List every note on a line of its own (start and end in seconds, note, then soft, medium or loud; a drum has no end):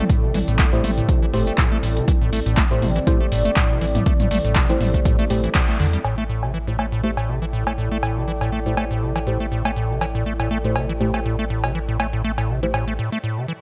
0.00 6.01 G3 medium
0.00 6.00 C4 medium
0.00 6.01 E4 medium
0.00 6.03 E4 medium
0.00 2.07 A4 medium
0.00 6.05 A4 medium
0.00 6.05 D5 medium
0.00 6.05 G5 medium
0.09 0.25 A2 medium
0.09 kick loud
0.09 closed hi-hat medium
0.23 0.32 C3 medium
0.34 0.44 A1 loud
0.34 0.39 E3 medium
0.34 mid tom medium
0.34 open hi-hat loud
0.48 0.64 A1 medium
0.48 0.57 A2 medium
0.48 closed hi-hat soft
0.59 0.67 A3 medium
0.59 kick loud
0.59 clap loud
0.59 closed hi-hat medium
0.73 0.82 A2 medium
0.73 1.31 A3 medium
0.73 1.31 E4 medium
0.73 1.31 G4 medium
0.73 1.31 C5 medium
0.84 1.02 A1 medium
0.84 0.91 A3 loud
0.84 mid tom loud
0.84 open hi-hat medium
0.97 1.10 A2 medium
0.97 closed hi-hat soft
1.09 1.20 C3 medium
1.09 kick loud
1.09 closed hi-hat medium
1.22 1.26 E3 medium
1.33 1.51 G1 medium
1.33 1.45 A2 medium
1.33 1.46 A3 medium
1.33 1.46 E4 medium
1.33 1.46 G4 medium
1.33 1.46 C5 medium
1.33 open hi-hat loud
1.47 1.53 A3 medium
1.47 closed hi-hat medium
1.58 1.69 A2 medium
1.58 kick loud
1.58 clap loud
1.58 closed hi-hat medium
1.72 1.78 A3 loud
1.83 2.01 A1 medium
1.83 1.98 A2 medium
1.83 open hi-hat medium
1.97 2.06 C3 medium
1.97 closed hi-hat soft
2.08 2.12 E3 medium
2.08 6.03 D5 medium
2.08 kick loud
2.08 closed hi-hat medium
2.21 2.31 A2 medium
2.33 2.42 A1 loud
2.33 2.40 A3 medium
2.33 open hi-hat loud
2.46 2.63 A1 medium
2.46 2.55 A2 medium
2.46 closed hi-hat medium
2.57 2.65 A3 loud
2.57 kick loud
2.57 clap loud
2.57 closed hi-hat medium
2.71 2.84 A2 medium
2.71 2.89 A3 medium
2.71 2.89 E4 medium
2.71 2.89 G4 medium
2.71 2.89 C5 medium
2.82 3.00 A1 medium
2.82 2.93 C3 medium
2.82 mid tom medium
2.82 open hi-hat medium
2.96 2.99 E3 medium
2.96 closed hi-hat medium
3.07 3.18 A2 medium
3.07 3.20 A3 medium
3.07 3.20 E4 medium
3.07 3.20 G4 medium
3.07 3.20 C5 loud
3.07 kick loud
3.07 closed hi-hat medium
3.20 3.27 A3 medium
3.32 3.50 G1 medium
3.32 3.43 A2 medium
3.32 open hi-hat loud
3.45 3.51 A3 loud
3.45 closed hi-hat medium
3.56 3.72 A2 medium
3.56 kick loud
3.56 clap loud
3.56 closed hi-hat medium
3.70 3.79 C3 medium
3.81 3.99 A1 medium
3.81 3.86 E3 medium
3.81 open hi-hat medium
3.95 4.04 A2 medium
3.95 closed hi-hat medium
3.95 mid tom medium
4.06 4.14 A3 medium
4.06 kick loud
4.06 closed hi-hat medium
4.20 4.29 A2 medium
4.20 closed hi-hat soft
4.20 mid tom medium
4.31 4.40 A1 loud
4.31 4.38 A3 loud
4.31 mid tom medium
4.31 open hi-hat loud
4.44 4.61 A1 medium
4.44 4.57 A2 medium
4.44 closed hi-hat medium
4.55 4.67 C3 medium
4.55 kick loud
4.55 clap loud
4.55 closed hi-hat medium
4.69 4.73 E3 medium
4.69 5.27 A3 medium
4.69 5.27 E4 medium
4.69 5.27 G4 medium
4.69 5.27 C5 medium
4.69 closed hi-hat soft
4.81 4.98 A1 medium
4.81 4.92 A2 medium
4.81 mid tom medium
4.81 open hi-hat medium
4.94 5.00 A3 medium
4.94 kick medium
4.94 closed hi-hat medium
5.05 5.17 A2 medium
5.05 kick loud
5.05 closed hi-hat medium
5.19 5.25 A3 loud
5.19 closed hi-hat soft
5.30 5.48 A1 loud
5.30 5.41 A2 medium
5.30 5.43 A3 medium
5.30 5.43 E4 medium
5.30 5.43 G4 medium
5.30 5.43 C5 medium
5.30 open hi-hat loud
5.44 5.50 E3 medium
5.44 closed hi-hat medium
5.55 5.62 B2 medium
5.55 kick loud
5.55 clap loud
5.55 closed hi-hat medium
5.69 5.78 A3 medium
5.80 5.97 E2 loud
5.80 5.87 D3 loud
5.80 open hi-hat medium
5.93 6.00 G3 medium
5.93 closed hi-hat medium
6.04 12.99 A1 medium
6.04 6.16 A2 medium
6.04 12.95 G3 medium
6.04 12.95 C4 medium
6.04 12.99 E4 medium
6.04 12.95 E4 medium
6.04 12.95 A4 medium
6.04 cowbell medium
6.18 6.24 A3 medium
6.23 12.99 D5 medium
6.29 6.44 A2 medium
6.43 6.52 C3 medium
6.43 cowbell soft
6.54 6.59 E3 medium
6.60 12.99 A4 medium
6.67 6.77 A2 medium
6.67 6.86 A3 medium
6.67 6.86 E4 medium
6.67 6.86 G4 medium
6.67 6.86 C5 medium
6.79 6.86 A3 medium
6.79 cowbell medium
6.85 12.99 G5 medium
6.92 7.02 A2 medium
7.04 7.11 A3 medium
7.04 7.16 A3 medium
7.04 7.16 E4 medium
7.04 7.16 G4 medium
7.04 7.16 C5 medium
7.17 7.30 A2 medium
7.17 cowbell soft
7.28 7.40 C3 medium
7.42 7.46 E3 medium
7.53 7.64 A2 medium
7.67 7.73 A3 medium
7.67 cowbell medium
7.78 7.89 A2 medium
7.92 7.98 A3 medium
8.03 8.18 A2 medium
8.03 cowbell soft
8.16 8.26 C3 medium
8.28 8.32 E3 medium
8.41 8.50 A2 medium
8.41 cowbell soft
8.52 8.60 A3 medium
8.66 8.75 A2 medium
8.66 9.24 A3 medium
8.66 9.24 E4 medium
8.66 9.24 G4 medium
8.66 9.24 C5 medium
8.77 8.85 A3 medium
8.77 cowbell medium
8.91 9.04 A2 medium
9.02 9.13 C3 medium
9.16 9.19 E3 medium
9.16 cowbell soft
9.27 9.38 A2 medium
9.27 9.40 A3 medium
9.27 9.40 E4 medium
9.27 9.40 G4 medium
9.27 9.40 C5 medium
9.40 9.47 A3 medium
9.52 9.63 A2 medium
9.65 9.71 A3 loud
9.65 cowbell medium
9.76 9.92 A2 medium
9.90 9.99 C3 medium
10.01 10.06 E3 medium
10.01 cowbell medium
10.15 10.24 A2 medium
10.26 10.34 A3 medium
10.40 10.49 A2 medium
10.40 cowbell soft
10.51 10.58 A3 medium
10.64 10.77 A2 medium
10.64 10.83 A3 medium
10.64 10.83 E4 medium
10.64 10.83 G4 medium
10.64 10.83 C5 medium
10.76 10.87 C3 medium
10.76 cowbell soft
10.89 10.93 E3 medium
11.00 11.12 A2 medium
11.00 11.13 A3 medium
11.00 11.13 E4 medium
11.00 11.13 G4 medium
11.00 11.13 C5 medium
11.14 11.20 A3 medium
11.14 cowbell soft
11.25 11.36 A2 medium
11.39 11.45 A3 medium
11.50 11.65 A2 medium
11.64 11.73 C3 medium
11.64 cowbell medium
11.75 11.79 E3 medium
11.88 11.98 A2 medium
12.00 12.07 A3 medium
12.00 cowbell medium
12.13 12.22 A2 medium
12.24 12.32 A3 loud
12.38 12.51 A2 medium
12.38 cowbell soft
12.49 12.60 C3 medium
12.63 12.66 E3 medium
12.63 12.99 A3 medium
12.63 12.99 E4 medium
12.63 12.99 G4 medium
12.63 12.99 C5 medium
12.74 12.85 A2 medium
12.74 cowbell medium
12.88 12.94 A3 medium
12.99 13.10 A2 medium
13.12 13.19 A3 medium
13.24 13.39 A2 medium
13.37 13.46 C3 medium
13.48 13.53 E3 medium